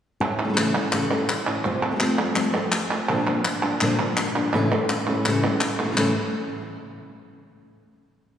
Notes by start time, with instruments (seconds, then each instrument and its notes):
0.20 nylon-string guitar A2 E3 A3 C#4 E4, muted nylon-string guitar stroke
0.39 nylon-string guitar C#4 E4
0.44 nylon-string guitar C#3 E3 A3 C#4 A4
0.48 nylon-string guitar C#3 E3 A3 C#4 A4
0.53 nylon-string guitar C#3 E3 A3 C#4 A4
0.57 nylon-string guitar A2 C#3 E3 A3 C#4 E4 A4, clap
0.75 nylon-string guitar E3 A3 C#4 A4, clap
0.92 nylon-string guitar A2 C#3 E3 A3 C#4 A4, muted nylon-string guitar stroke, clap
1.11 nylon-string guitar E3 A3 C#4 E4 A4, clap
1.29 muted nylon-string guitar stroke, clap
1.47 nylon-string guitar A3 C#4 E4, clap
1.65 nylon-string guitar F2 C3 F3 A3 C4 F4, muted nylon-string guitar stroke, clap
1.82 nylon-string guitar F3 A3 C4 F4, clap
1.91 nylon-string guitar A3 C4 F4 A4
1.96 nylon-string guitar A3 C4 F4 A4
2.00 nylon-string guitar F3 A3 C4 F4 A4, clap
2.19 nylon-string guitar C4 F4 A4, clap
2.35 nylon-string guitar F3 A3 C4 F4 A4, muted nylon-string guitar stroke, clap
2.54 nylon-string guitar F3 A3 C4 F4 A4, clap
2.72 muted nylon-string guitar stroke, clap
2.91 nylon-string guitar F3 A3 C4 F4, clap
3.08 nylon-string guitar A#2 D3 F3 A#3 D4 F4 A#4, clap
3.27 nylon-string guitar F3 A#3 D4 F4 A#4, clap
3.44 muted nylon-string guitar stroke, clap
3.63 nylon-string guitar F3 A#3 D4 F4 A#4, clap
3.81 nylon-string guitar A#2 D3 F3 A#3 D4 F4 A#4, clap
3.99 nylon-string guitar F3 A#3 D4 F4 A#4, clap
4.17 muted nylon-string guitar stroke, clap
4.35 nylon-string guitar F3 A#3 D4 F4 A#4, clap
4.53 nylon-string guitar A2 C#3 E3 A3 C#4 E4 A4, clap
4.71 nylon-string guitar E3 A3 C#4 E4 A4, clap
4.89 muted nylon-string guitar stroke, clap
5.07 nylon-string guitar A3 C#4 E4 A4, clap
5.12 nylon-string guitar E3
5.25 nylon-string guitar A2 C#3 E3 A3 C#4 E4 A4, clap
5.43 nylon-string guitar E3 A3 C#4 E4, clap
5.61 muted nylon-string guitar stroke, clap
5.79 nylon-string guitar E3 A3 C#4 E4 A4, clap
5.84 nylon-string guitar C#3 E3 A3 C#4 A4
5.88 nylon-string guitar C#3 E3 A3 C#4 A4
5.92 nylon-string guitar C#3 E3 A3 C#4 A4
5.97 nylon-string guitar A2 C#3 E3 A3 C#4 E4 A4, clap